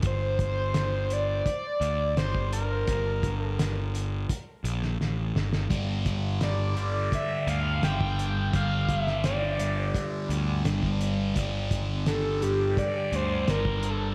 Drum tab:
HH |x-x-x-x-x-x-x-x-|x-x-x-x-x-x-----|x-x-x-x-x-x-x-x-|x-x-x-x-x-x-x-x-|
SD |----o-------o---|----o------oo-oo|----o-------o---|---oo-------oo--|
BD |o-o-----o----o--|o-o-----o-------|o-o-----o----o--|o-o-----o----o--|

HH |x-x-x-x-x-x-x-x-|
SD |----o-------o---|
BD |o-o-----o----o--|